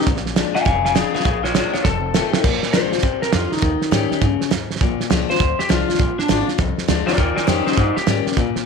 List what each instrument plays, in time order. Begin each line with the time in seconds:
0.01 snare
0.07 upright bass A#1, steel-string acoustic guitar A#2, kick, snare
0.17 snare
0.26 snare
0.36 steel-string acoustic guitar F3 G#3 D4 F4, snare, hi-hat pedal
0.54 steel-string acoustic guitar D4 F4, clean electric guitar F5 G#5, snare
0.65 upright bass F1, steel-string acoustic guitar F2, clean electric guitar F5 G#5, kick, snare
0.85 clean electric guitar F5 G#5, snare
0.95 steel-string acoustic guitar F3 G#3 D4 F4, clean electric guitar G#4 F5, snare, hi-hat pedal
1.14 steel-string acoustic guitar D4 F4, clean electric guitar G#4 F5, muted upright bass stroke, snare
1.20 snare
1.25 upright bass A#1, steel-string acoustic guitar A#2, clean electric guitar G#4 F5, kick, snare
1.44 clean electric guitar F4 C#5, snare
1.54 steel-string acoustic guitar F3 G#3 D4 F4, clean electric guitar F4 C#5, snare, hi-hat pedal
1.73 steel-string acoustic guitar D4 F4, clean electric guitar F4 C#5, muted upright bass stroke, snare
1.84 upright bass F1, steel-string acoustic guitar F2, clean electric guitar A4, kick, snare
2.14 steel-string acoustic guitar D#3 A3 C4 F4, snare, hi-hat pedal
2.33 muted upright bass stroke, snare
2.44 upright bass A#1, steel-string acoustic guitar A#2, kick, snare, crash
2.63 muted upright bass stroke, snare
2.73 upright bass C2, steel-string acoustic guitar F3 G#3 D4 F4, clean electric guitar C5, snare, hi-hat pedal
2.92 steel-string acoustic guitar D4 F4, muted upright bass stroke, snare
2.98 snare
3.02 upright bass D2, steel-string acoustic guitar C3, kick, snare
3.22 clean electric guitar A#4, muted upright bass stroke, snare
3.32 upright bass F2, steel-string acoustic guitar D3, clean electric guitar F4, snare, hi-hat pedal
3.52 clean electric guitar D#4, muted upright bass stroke, snare
3.57 snare
3.62 upright bass D#2, steel-string acoustic guitar D#3, kick, snare
3.82 snare
3.91 upright bass G#2, steel-string acoustic guitar D#3 G3 C#4 G4, snare, hi-hat pedal
4.11 muted upright bass stroke, snare
4.21 upright bass G2, steel-string acoustic guitar C#3, kick, snare
4.41 muted upright bass stroke, snare
4.51 upright bass D#2, steel-string acoustic guitar G#2, snare, hi-hat pedal
4.71 muted upright bass stroke, snare
4.76 snare
4.81 upright bass A#1, steel-string acoustic guitar A#2, kick, snare
5.00 muted upright bass stroke, snare
5.10 upright bass C#2, steel-string acoustic guitar F3 G#3 D4 F4, snare, hi-hat pedal
5.29 steel-string acoustic guitar D4 F4, clean electric guitar C5, snare
5.35 snare
5.40 upright bass D2, steel-string acoustic guitar F2, kick, snare
5.59 clean electric guitar G4, snare
5.69 upright bass C2, steel-string acoustic guitar F3 G#3 D4 F4, clean electric guitar F4, snare, hi-hat pedal
5.88 steel-string acoustic guitar D4 F4, snare
5.94 snare
5.99 upright bass A#1, steel-string acoustic guitar A#2, kick, snare
6.18 clean electric guitar D4, muted upright bass stroke, snare
6.28 upright bass G#1, steel-string acoustic guitar F3 G#3 D4 F4, snare, hi-hat pedal
6.47 steel-string acoustic guitar D4 F4, muted upright bass stroke, snare
6.58 upright bass C2, steel-string acoustic guitar F2, kick, snare
6.78 muted upright bass stroke, snare
6.88 upright bass D2, steel-string acoustic guitar F3 G#3 D4 F4, snare, hi-hat pedal
7.06 steel-string acoustic guitar D4 F4, clean electric guitar F4 D5, snare
7.13 clean electric guitar F4, snare
7.18 upright bass D#2, steel-string acoustic guitar D#3, clean electric guitar D5, kick, snare
7.36 clean electric guitar F4 D5, muted upright bass stroke, snare
7.46 upright bass F2, steel-string acoustic guitar D#3 G3 C#4 G4, clean electric guitar D#4 C5, snare, hi-hat pedal
7.66 steel-string acoustic guitar C#4 G4, clean electric guitar D#4 C5, muted upright bass stroke, snare
7.72 clean electric guitar D#4, snare
7.77 upright bass G2, steel-string acoustic guitar A#2, clean electric guitar C5, kick, snare
7.96 clean electric guitar G4, muted upright bass stroke, snare
8.07 upright bass G#2, steel-string acoustic guitar D#3 G3 C#4 G4, snare, hi-hat pedal
8.26 steel-string acoustic guitar C#4 G4, muted upright bass stroke, snare
8.32 snare
8.37 upright bass A#2, steel-string acoustic guitar A#2, kick, snare
8.55 muted upright bass stroke, snare